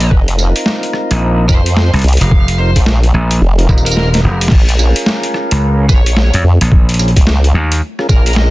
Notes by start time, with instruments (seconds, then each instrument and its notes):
Already playing: lead electric guitar D#5
0.00 closed hi-hat
0.11 wobble bass F1, kick
0.28 closed hi-hat
0.39 tonewheel organ C4 D#4 F4 A#4, tambourine
0.56 closed hi-hat
0.66 snare
0.83 closed hi-hat
0.93 cross-stick
1.11 slap bass A#1, closed hi-hat
1.48 wobble bass F2, tonewheel organ C4 D#4 F4 A#4, lead electric guitar C5, kick, tambourine
1.66 closed hi-hat
1.77 snare
1.93 slap bass C2, closed hi-hat
1.96 closed hi-hat
1.99 closed hi-hat
2.02 wobble bass C2, closed hi-hat
2.04 closed hi-hat
2.08 closed hi-hat
2.13 closed hi-hat
2.17 slap bass F1, lead electric guitar F5, closed hi-hat
2.21 closed hi-hat
2.31 kick
2.48 closed hi-hat
2.58 tonewheel organ C4 D#4 F4 A#4, lead electric guitar C5
2.76 wobble bass A#1, kick, closed hi-hat
2.86 snare
3.03 closed hi-hat
3.14 slap bass A#1
3.31 closed hi-hat
3.41 wobble bass F1
3.58 tonewheel organ C4 D#4 F4 A#4, closed hi-hat
3.69 slap bass D#1, tonewheel organ C4 D#4 F4 A#4, kick, tambourine
3.78 tambourine
3.86 lead electric guitar A#4, closed hi-hat, tambourine
3.91 tambourine
3.96 lead electric guitar A#4, snare
4.13 tonewheel organ C4 D#4 F4 A#4, snare, closed hi-hat
4.24 slap bass F1
4.41 closed hi-hat
4.48 wobble bass A#1, kick, snare, crash
4.69 closed hi-hat
4.79 tonewheel organ C#4 F4 G#4 A#4, tambourine
4.96 closed hi-hat
5.06 snare
5.23 closed hi-hat
5.34 cross-stick
5.51 slap bass C#2, closed hi-hat
5.89 wobble bass A#1, tonewheel organ C#4 F4 G#4 A#4, lead electric guitar C#5, kick, tambourine
6.06 closed hi-hat
6.17 snare
6.34 slap bass F2, closed hi-hat
6.44 wobble bass F2
6.61 slap bass A#1, closed hi-hat
6.72 kick
6.89 closed hi-hat
6.94 closed hi-hat
6.99 tonewheel organ C#4 F4 G#4 A#4, closed hi-hat, tambourine
7.08 closed hi-hat
7.16 wobble bass C#2, kick, closed hi-hat
7.27 snare
7.44 closed hi-hat
7.54 slap bass D#2
7.72 closed hi-hat
7.99 tonewheel organ C#4 F4 G#4 A#4, cross-stick
8.09 wobble bass A#1, tonewheel organ C#4 F4 G#4 A#4, lead electric guitar A#4, kick, tambourine
8.26 lead electric guitar A#4, closed hi-hat
8.33 lead electric guitar D#5, snare, closed hi-hat